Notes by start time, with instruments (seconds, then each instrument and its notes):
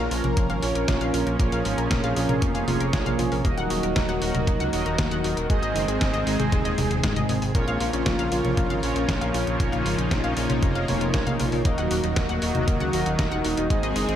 Already playing: analog synth pad F3 A#3 C#4 A#4
0.11 analog synth bass A#1, analog polysynth C#4 F4 A#4 C#5, synth arpeggio sound F4, open hi-hat
0.24 analog synth bass A#1, synth arpeggio sound A#4, closed hi-hat, high conga
0.37 analog synth bass A#1, synth arpeggio sound A#3, kick, closed hi-hat
0.50 analog synth bass G#1, synth arpeggio sound F5, closed hi-hat
0.62 analog synth bass A#1, analog polysynth C#4 F4 A#4 C#5, synth arpeggio sound F4, open hi-hat
0.75 analog synth bass A#1, synth arpeggio sound A#4, closed hi-hat
0.88 analog synth bass A#1, synth arpeggio sound A#3, kick, snare, closed hi-hat
1.01 analog synth bass A#1, synth arpeggio sound F5, closed hi-hat
1.14 analog synth bass A#1, synth arpeggio sound F4, open hi-hat
1.27 analog synth bass A#1, synth arpeggio sound A#4, closed hi-hat
1.39 analog synth bass A#1, synth arpeggio sound A#3, analog polysynth C#4 F4 A#4 C#5, analog synth pad G#4, kick, closed hi-hat
1.52 analog synth bass A#1, synth arpeggio sound F5, closed hi-hat
1.65 analog synth bass G#1, synth arpeggio sound F4, open hi-hat
1.78 analog synth bass A#1, synth arpeggio sound A#4, closed hi-hat
1.91 analog synth bass A#1, synth arpeggio sound A#3, kick, snare, closed hi-hat
2.04 analog synth bass A#1, synth arpeggio sound F5, closed hi-hat
2.16 analog synth bass A#1, analog polysynth C#4 F4 A#4 C#5, synth arpeggio sound F4, open hi-hat
2.29 analog synth bass A#1, synth arpeggio sound A#4, closed hi-hat, high conga
2.42 analog synth bass F1, synth arpeggio sound A#3, kick, closed hi-hat
2.55 analog synth bass F1, synth arpeggio sound F5, closed hi-hat
2.68 analog synth bass F1, analog polysynth C#4 F4 A#4 C#5, synth arpeggio sound F4, open hi-hat, high conga
2.80 analog synth bass F1, synth arpeggio sound A#4, closed hi-hat
2.93 analog synth bass A#1, synth arpeggio sound A#3, kick, snare, closed hi-hat
3.06 analog synth bass A#1, synth arpeggio sound F5, closed hi-hat, high conga
3.19 analog synth bass A#1, synth arpeggio sound F4, open hi-hat, high conga
3.32 analog synth bass A#1, synth arpeggio sound A#4, open hi-hat
3.45 analog synth bass D#1, analog synth pad D#3 F#3 F#4, synth arpeggio sound A#3, analog polysynth D#4 F#4 A#4 D#5, kick, closed hi-hat
3.58 analog synth bass D#1, synth arpeggio sound F#5, closed hi-hat
3.70 analog synth bass D#1, synth arpeggio sound F#4, open hi-hat
3.83 analog synth bass D#1, synth arpeggio sound A#4, closed hi-hat
3.96 analog synth bass D#1, synth arpeggio sound A#3, kick, snare, closed hi-hat
4.09 analog synth bass D#1, synth arpeggio sound F#5, closed hi-hat
4.22 analog synth bass D#1, analog polysynth D#4 F#4 A#4 D#5, synth arpeggio sound F#4, open hi-hat
4.34 analog synth bass D#1, synth arpeggio sound A#4, closed hi-hat, high conga
4.47 analog synth bass D#1, synth arpeggio sound A#3, kick, closed hi-hat
4.60 analog synth bass C#2, synth arpeggio sound F#5, closed hi-hat
4.73 analog synth bass D#1, analog polysynth D#4 F#4 A#4 D#5, synth arpeggio sound F#4, open hi-hat
4.86 analog synth bass D#1, synth arpeggio sound A#4, closed hi-hat
4.98 analog synth bass D#1, synth arpeggio sound A#3, kick, snare, closed hi-hat
5.11 analog synth bass D#1, synth arpeggio sound F#5, closed hi-hat
5.24 analog synth bass D#1, synth arpeggio sound F#4, open hi-hat
5.37 analog synth bass D#1, synth arpeggio sound A#4, closed hi-hat
5.50 analog synth bass G#1, analog synth pad G#3 C4 G#4, synth arpeggio sound G#3, analog polysynth D#4 G#4 C5 D#5, kick, closed hi-hat
5.62 analog synth bass G#1, synth arpeggio sound D#5, closed hi-hat
5.75 analog synth bass F#1, synth arpeggio sound D#4, open hi-hat
5.88 analog synth bass G#1, synth arpeggio sound G#4, closed hi-hat
6.01 analog synth bass G#1, synth arpeggio sound G#3, kick, snare, closed hi-hat
6.13 analog synth bass G#1, synth arpeggio sound D#5, closed hi-hat
6.27 analog synth bass G#1, synth arpeggio sound D#4, analog polysynth D#4 G#4 C5 D#5, open hi-hat
6.39 analog synth bass G#1, synth arpeggio sound G#4, closed hi-hat, high conga
6.52 analog synth bass D#1, synth arpeggio sound G#3, kick, closed hi-hat
6.65 analog synth bass D#1, synth arpeggio sound D#5, closed hi-hat
6.78 analog synth bass D#1, synth arpeggio sound D#4, open hi-hat, high conga
6.91 analog synth bass D#1, synth arpeggio sound G#4, closed hi-hat
7.03 analog synth bass G#1, synth arpeggio sound G#3, kick, snare, closed hi-hat
7.16 analog synth bass G#1, synth arpeggio sound D#5, closed hi-hat, high conga
7.29 analog synth bass G#1, synth arpeggio sound D#4, open hi-hat, high conga
7.42 analog synth bass G#1, synth arpeggio sound G#4, open hi-hat
7.55 analog synth bass A#1, analog synth pad C#3 F3 A#3 F4, synth arpeggio sound A#3, analog polysynth C#4 F4 A#4 C#5, kick, closed hi-hat
7.68 analog synth bass A#1, synth arpeggio sound F5, closed hi-hat
7.80 analog synth bass A#1, synth arpeggio sound F4, open hi-hat
7.93 analog synth bass A#1, synth arpeggio sound C#4, closed hi-hat
8.06 analog synth bass A#1, synth arpeggio sound A#3, kick, snare, closed hi-hat
8.19 analog synth bass A#1, synth arpeggio sound F5, closed hi-hat
8.31 analog synth bass A#1, analog polysynth C#4 F4 A#4 C#5, synth arpeggio sound F4, open hi-hat
8.44 analog synth bass A#1, synth arpeggio sound C#4, closed hi-hat, high conga
8.57 analog synth bass A#1, synth arpeggio sound A#3, kick, closed hi-hat
8.70 analog synth bass G#1, synth arpeggio sound F5, closed hi-hat
8.83 analog synth bass A#1, analog polysynth C#4 F4 A#4 C#5, synth arpeggio sound F4, open hi-hat
8.96 analog synth bass A#1, synth arpeggio sound C#4, closed hi-hat
9.08 analog synth bass A#1, synth arpeggio sound A#3, kick, snare, closed hi-hat
9.21 analog synth bass A#1, synth arpeggio sound F5, closed hi-hat
9.34 analog synth bass A#1, synth arpeggio sound F4, open hi-hat
9.47 analog synth bass A#1, synth arpeggio sound C#4, closed hi-hat
9.60 analog synth bass A#1, synth arpeggio sound A#3, analog polysynth C#4 F4 A#4 C#5, analog synth pad D#4, kick, closed hi-hat
9.72 analog synth bass A#1, synth arpeggio sound F5, closed hi-hat
9.85 analog synth bass G#1, synth arpeggio sound F4, open hi-hat
9.98 analog synth bass A#1, synth arpeggio sound C#4, closed hi-hat
10.11 analog synth bass A#1, synth arpeggio sound A#3, kick, snare, closed hi-hat
10.24 analog synth bass A#1, synth arpeggio sound F5, closed hi-hat
10.37 analog synth bass A#1, analog polysynth C#4 F4 A#4 C#5, synth arpeggio sound F4, open hi-hat
10.49 analog synth bass A#1, synth arpeggio sound C#4, closed hi-hat, high conga
10.62 analog synth bass F1, synth arpeggio sound A#3, kick, closed hi-hat
10.75 analog synth bass F1, synth arpeggio sound F5, closed hi-hat
10.88 analog synth bass F1, analog polysynth C#4 F4 A#4 C#5, synth arpeggio sound F4, open hi-hat, high conga
11.01 analog synth bass F1, synth arpeggio sound C#4, closed hi-hat
11.14 analog synth bass A#1, synth arpeggio sound A#3, kick, snare, closed hi-hat
11.27 analog synth bass A#1, synth arpeggio sound F5, closed hi-hat, high conga
11.40 analog synth bass A#1, synth arpeggio sound F4, open hi-hat, high conga
11.52 analog synth bass A#1, synth arpeggio sound C#4, open hi-hat
11.65 analog synth bass D#1, analog synth pad D#3 F#3 F#4, synth arpeggio sound A#3, analog polysynth D#4 F#4 A#4 D#5, kick, closed hi-hat
11.78 analog synth bass D#1, synth arpeggio sound F#5, closed hi-hat
11.91 analog synth bass D#1, synth arpeggio sound F#4, open hi-hat
12.04 analog synth bass D#1, synth arpeggio sound D#4, closed hi-hat
12.16 analog synth bass D#1, synth arpeggio sound A#3, kick, snare, closed hi-hat
12.29 analog synth bass D#1, synth arpeggio sound F#5, closed hi-hat
12.42 analog synth bass D#1, analog polysynth D#4 F#4 A#4 D#5, synth arpeggio sound F#4, open hi-hat
12.55 analog synth bass D#1, synth arpeggio sound D#4, closed hi-hat, high conga
12.68 analog synth bass D#1, synth arpeggio sound A#3, kick, closed hi-hat
12.80 analog synth bass C#2, synth arpeggio sound F#5, closed hi-hat
12.93 analog synth bass D#1, analog polysynth D#4 F#4 A#4 D#5, synth arpeggio sound F#4, open hi-hat
13.06 analog synth bass D#1, synth arpeggio sound D#4, closed hi-hat
13.19 analog synth bass D#1, synth arpeggio sound A#3, kick, snare, closed hi-hat
13.32 analog synth bass D#1, synth arpeggio sound F#5, closed hi-hat
13.44 analog synth bass D#1, synth arpeggio sound F#4, open hi-hat
13.57 analog synth bass D#1, synth arpeggio sound D#4, closed hi-hat
13.70 analog synth bass G#1, analog synth pad G#3 C4 G#4, synth arpeggio sound G#3, analog polysynth D#4 G#4 C5 D#5, kick, closed hi-hat
13.83 analog synth bass G#1, synth arpeggio sound D#5, closed hi-hat
13.96 analog synth bass F#1, synth arpeggio sound D#4, open hi-hat
14.09 analog synth bass G#1, synth arpeggio sound C4, closed hi-hat